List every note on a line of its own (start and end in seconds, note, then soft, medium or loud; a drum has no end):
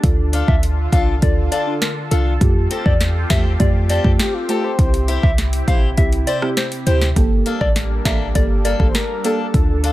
0.00 0.43 D2 loud
0.00 2.39 D3 medium
0.00 2.37 D4 medium
0.00 0.58 D4 loud
0.00 0.58 F4 medium
0.00 2.39 F4 medium
0.00 4.75 A4 loud
0.00 0.58 A4 loud
0.00 kick loud
0.00 closed hi-hat medium
0.33 0.54 D4 medium
0.33 0.55 F4 medium
0.33 0.55 A4 loud
0.33 closed hi-hat medium
0.48 0.87 D2 loud
0.48 0.58 E5 medium
0.48 kick loud
0.63 closed hi-hat medium
0.92 1.19 C2 medium
0.92 1.14 D4 medium
0.92 1.07 D4 medium
0.92 1.07 F4 medium
0.92 1.14 F4 medium
0.92 1.08 A4 medium
0.92 1.14 A4 medium
0.92 1.03 F5 medium
0.92 kick loud
0.92 closed hi-hat medium
1.22 1.48 D2 loud
1.22 1.63 D4 medium
1.22 1.63 F4 medium
1.22 1.63 A4 loud
1.22 1.32 D5 medium
1.22 kick medium
1.22 closed hi-hat medium
1.52 1.73 D4 medium
1.52 1.73 F4 loud
1.52 1.74 A4 medium
1.52 1.62 D5 medium
1.52 closed hi-hat medium
1.66 1.81 D4 medium
1.66 1.82 F4 medium
1.66 1.82 A4 medium
1.81 1.92 A#4 medium
1.81 snare loud
1.81 closed hi-hat medium
2.11 2.37 C2 medium
2.11 2.32 D4 medium
2.11 2.26 D4 medium
2.11 2.26 F4 medium
2.11 2.33 F4 medium
2.11 2.21 A4 medium
2.11 2.26 A4 medium
2.11 2.33 A4 medium
2.11 closed hi-hat medium
2.41 2.67 F2 loud
2.41 2.96 A3 loud
2.41 7.12 C4 medium
2.41 2.96 F4 medium
2.41 4.76 F4 medium
2.41 7.12 G4 medium
2.41 2.96 G4 loud
2.41 kick loud
2.41 closed hi-hat medium
2.70 2.92 C4 medium
2.70 2.92 G4 medium
2.70 2.92 A4 medium
2.70 closed hi-hat medium
2.86 3.25 E2 medium
2.86 2.96 D5 medium
2.86 kick medium
3.01 snare medium
3.01 closed hi-hat medium
3.30 3.56 E2 loud
3.30 3.45 A3 medium
3.30 3.51 C4 medium
3.30 3.45 F4 medium
3.30 3.45 G4 medium
3.30 3.52 G4 medium
3.30 3.52 A4 medium
3.30 3.40 E5 medium
3.30 kick loud
3.30 snare loud
3.30 closed hi-hat medium
3.60 3.99 F2 loud
3.60 4.01 A3 medium
3.60 4.01 F4 medium
3.60 4.01 G4 loud
3.60 3.70 D5 medium
3.60 kick loud
3.60 closed hi-hat medium
3.89 4.11 C4 medium
3.89 4.11 G4 loud
3.89 4.11 A4 loud
3.89 4.00 D5 medium
3.89 closed hi-hat medium
4.04 4.17 F2 loud
4.04 4.19 A3 medium
4.04 4.19 F4 medium
4.04 4.20 G4 medium
4.04 kick loud
4.19 4.36 G4 medium
4.19 snare loud
4.19 closed hi-hat medium
4.34 4.50 F4 medium
4.49 4.64 A3 medium
4.49 4.70 C4 medium
4.49 4.64 F4 medium
4.49 4.70 G4 medium
4.49 4.64 G4 medium
4.49 4.65 A4 loud
4.49 4.71 A4 medium
4.49 closed hi-hat medium
4.64 5.08 C5 loud
4.78 5.18 C2 loud
4.78 7.14 C3 medium
4.78 5.33 C4 medium
4.78 5.33 E4 medium
4.78 7.14 E4 medium
4.78 5.34 G4 loud
4.78 kick loud
4.78 closed hi-hat medium
4.94 closed hi-hat medium
5.08 5.29 E4 medium
5.08 5.30 G4 medium
5.08 5.30 C5 loud
5.08 closed hi-hat medium
5.23 5.62 C2 medium
5.23 5.33 E5 medium
5.23 kick medium
5.38 snare medium
5.38 closed hi-hat medium
5.53 closed hi-hat medium
5.67 5.94 A#1 medium
5.67 5.83 C4 medium
5.67 5.89 E4 medium
5.67 5.83 E4 medium
5.67 5.89 G4 medium
5.67 5.83 G4 medium
5.67 5.90 C5 medium
5.67 5.78 F5 medium
5.67 kick loud
5.67 closed hi-hat medium
5.97 6.24 C2 loud
5.97 6.38 C4 medium
5.97 6.39 E4 medium
5.97 6.39 G4 loud
5.97 6.08 E5 medium
5.97 kick medium
5.97 closed hi-hat medium
6.12 closed hi-hat soft
6.27 6.48 E4 medium
6.27 6.49 G4 medium
6.27 6.49 C5 loud
6.27 6.37 D5 medium
6.27 closed hi-hat medium
6.42 6.57 C4 medium
6.42 6.57 E4 medium
6.42 6.57 G4 medium
6.42 cross-stick loud
6.57 6.67 C5 medium
6.57 snare loud
6.57 closed hi-hat medium
6.72 closed hi-hat medium
6.86 7.13 D2 medium
6.86 7.01 C4 medium
6.86 7.08 E4 medium
6.86 7.02 E4 medium
6.86 7.08 G4 medium
6.86 7.02 G4 medium
6.86 6.97 C5 medium
6.86 7.08 C5 medium
6.86 closed hi-hat medium
7.01 snare medium
7.16 7.42 G1 loud
7.16 9.52 G3 medium
7.16 7.71 A#3 loud
7.16 9.52 A#3 medium
7.16 9.93 D4 medium
7.16 7.71 G4 medium
7.16 9.93 A4 medium
7.16 7.71 A4 loud
7.16 kick loud
7.16 closed hi-hat medium
7.46 7.67 A#3 medium
7.46 7.67 D4 medium
7.46 7.68 A4 loud
7.46 closed hi-hat medium
7.61 8.00 A1 medium
7.61 7.71 D5 medium
7.61 kick medium
7.76 snare medium
7.76 closed hi-hat medium
8.05 8.31 A1 loud
8.05 8.27 A#3 medium
8.05 8.20 A#3 medium
8.05 8.27 D4 medium
8.05 8.20 G4 medium
8.05 8.21 A4 medium
8.05 8.27 A4 medium
8.05 8.16 E5 medium
8.05 kick loud
8.05 snare loud
8.05 closed hi-hat medium
8.35 8.74 G1 loud
8.35 8.76 A#3 medium
8.35 8.76 G4 medium
8.35 8.76 A4 loud
8.35 8.45 D5 medium
8.35 kick loud
8.35 closed hi-hat medium
8.65 8.86 A#3 loud
8.65 8.86 D4 medium
8.65 8.87 A4 loud
8.65 8.75 D5 medium
8.65 closed hi-hat medium
8.79 8.93 G1 loud
8.79 8.94 A#3 medium
8.79 8.95 G4 medium
8.79 8.95 A4 medium
8.79 kick loud
8.88 8.96 C5 medium
8.95 9.26 A#4 loud
8.95 snare loud
8.95 closed hi-hat medium
9.24 9.45 A#3 medium
9.24 9.39 A#3 medium
9.24 9.46 D4 loud
9.24 9.39 G4 medium
9.24 9.84 A4 loud
9.24 9.39 A4 medium
9.24 9.46 A4 medium
9.24 closed hi-hat medium
9.54 9.93 D2 loud
9.54 9.93 D3 medium
9.54 9.93 D4 loud
9.54 9.93 F4 medium
9.54 9.93 A4 loud
9.54 kick loud
9.54 closed hi-hat medium
9.84 9.93 D4 medium
9.84 9.93 F4 medium
9.84 9.93 A4 medium
9.84 closed hi-hat medium